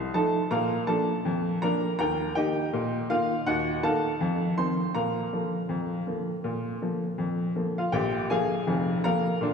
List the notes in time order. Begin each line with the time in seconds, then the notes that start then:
Already playing: A5
0.14 F3 A3 D#4 A4 A5
0.51 A#2 A#4 F5 A#5
0.87 F3 A#3 D4 A4 A5
1.25 F2
1.62 F3 A#3 D4 A#4 A#5
1.99 D#2 A#4 G5 A#5
2.35 D#3 A#3 D#4 G4 D#5 G5
2.73 A#2
3.10 D#3 A#3 D#4 F4 F5
3.46 D#2 F#4 D#5 F#5
3.83 D#3 A#3 D#4 A4 F5 A5
4.21 F2
4.58 D#3 F3 C4 C5 C6
4.95 A#2 A#4 F5 A#5
5.33 D3 F3 A#3
5.69 F2
6.07 D3 F3 A#3
6.44 A#2
6.82 D3 F3 A#3
7.18 F2
7.56 D3 F3 A#3
7.78 F4 F5
7.92 A#1 A#2 G4 G5
8.30 D3 F3 A#3 G#4 F5 G#5
8.67 F1 F2
9.04 D3 F3 A#3 A#4 F5 A#5
9.41 A#2 D4